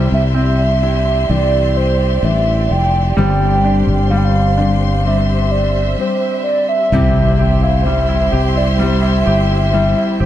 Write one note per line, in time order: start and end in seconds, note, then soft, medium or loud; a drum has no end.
0.00 0.82 C3 medium
0.00 3.13 C3 medium
0.00 0.82 E3 medium
0.00 0.83 G3 medium
0.00 1.73 G3 soft
0.00 0.82 D4 medium
0.00 0.81 G4 medium
0.00 6.88 G4 medium
0.00 5.01 D5 medium
0.00 3.14 E5 soft
0.00 3.14 C6 medium
0.12 1.26 C2 medium
0.12 0.24 E5 medium
0.34 2.19 C4 soft
0.34 1.32 E5 medium
0.82 1.28 G3 soft
0.82 1.29 D4 soft
0.82 2.66 E4 soft
0.82 1.29 G4 medium
1.29 2.19 C2 medium
1.29 2.21 E3 medium
1.29 2.23 G3 soft
1.29 2.23 D4 medium
1.29 2.24 G4 medium
1.29 1.78 D5 medium
1.77 2.26 C5 medium
2.23 2.67 A1 medium
2.23 3.17 E3 soft
2.23 3.18 G3 soft
2.23 3.18 D4 medium
2.23 3.18 G4 medium
2.23 2.73 E5 medium
2.71 3.14 F1 medium
2.71 3.17 G5 medium
3.15 3.83 G1 medium
3.15 4.58 G2 medium
3.15 4.58 D3 medium
3.15 4.09 G3 medium
3.15 4.60 G3 medium
3.15 4.59 C4 medium
3.15 4.58 D4 medium
3.15 4.58 G4 medium
3.15 6.88 C5 medium
3.15 4.07 G5 loud
3.15 6.88 C6 medium
3.65 4.56 D4 soft
3.87 5.94 G1 medium
4.10 5.94 G3 medium
4.10 4.19 F5 medium
4.17 4.26 G5 medium
4.25 5.04 F5 medium
4.57 5.04 G3 soft
4.57 5.05 C4 soft
4.57 6.41 D4 medium
4.57 5.05 D4 soft
4.57 5.05 G4 soft
5.05 5.97 G3 medium
5.05 5.98 C4 medium
5.05 5.98 D4 medium
5.05 5.99 G4 medium
5.05 6.90 E5 medium
5.05 5.53 E5 medium
5.51 5.98 D5 medium
5.98 6.92 G3 soft
5.98 6.92 C4 soft
5.98 6.93 D4 soft
5.98 6.94 G4 medium
5.98 6.43 C5 medium
6.44 6.66 D5 medium
6.69 7.35 E5 loud
6.92 8.29 C2 loud
6.92 8.79 C3 medium
6.92 10.26 C3 medium
6.92 8.78 G3 medium
6.92 8.80 C4 medium
6.92 8.81 E4 medium
6.92 10.26 G4 medium
6.92 8.80 G4 medium
6.92 10.26 C5 medium
6.92 10.26 E5 medium
6.92 10.26 C6 medium
6.92 impact medium
7.15 7.61 E4 soft
7.38 8.31 G4 medium
7.38 7.60 E5 loud
7.62 8.07 E4 soft
7.62 7.86 F5 medium
7.85 8.77 G3 soft
7.85 8.56 E5 loud
8.09 8.54 E4 medium
8.32 9.23 C2 medium
8.32 9.24 G4 medium
8.55 9.01 E4 soft
8.55 8.68 D5 medium
8.79 9.72 G3 medium
8.79 9.73 C4 medium
8.79 9.74 E4 medium
8.79 9.74 G4 medium
8.79 10.16 E5 loud
9.02 9.49 E4 medium
9.26 9.93 G1 medium
9.26 10.19 G4 medium
9.51 9.95 E4 soft
9.73 10.26 G3 soft
9.73 10.26 G3 medium
9.73 10.26 C4 medium
9.73 10.26 E4 medium
9.73 10.26 G4 medium
9.97 10.26 E4 soft
10.20 10.26 G1 medium
10.20 10.26 G4 medium
10.20 10.26 C5 medium